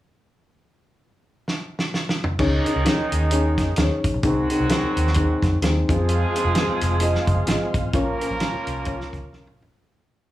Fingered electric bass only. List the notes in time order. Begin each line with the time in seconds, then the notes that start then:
2.39 C#2
2.76 C#2
2.99 muted fingered electric bass stroke
3.12 D#2
3.58 F2
3.78 D#2
4.04 A#1
4.14 B1
4.24 C2
4.60 C2
4.83 muted fingered electric bass stroke
4.97 D#2
5.42 F2
5.62 D#2
5.89 F2
6.44 F1
6.67 muted fingered electric bass stroke
6.81 F1
7.27 F#1
7.48 G#1
7.74 G#1
7.84 A1
7.93 A#1
8.30 A#1
8.54 muted fingered electric bass stroke
8.67 C2
9.13 C#2
9.33 C2
9.60 A1